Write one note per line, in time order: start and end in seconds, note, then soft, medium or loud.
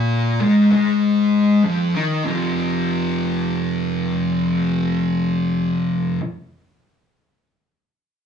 0.00 0.39 A#2 loud
0.00 0.40 A#3 loud
0.40 0.70 G#2 loud
0.40 0.71 G#3 loud
0.71 1.63 G#2 medium
0.71 1.64 G#3 loud
1.64 1.94 F2 medium
1.64 1.94 F3 loud
1.95 2.24 D#3 loud
1.95 2.25 D#4 loud
2.24 6.19 F2 medium
2.24 6.20 C3 loud
2.24 6.21 F3 loud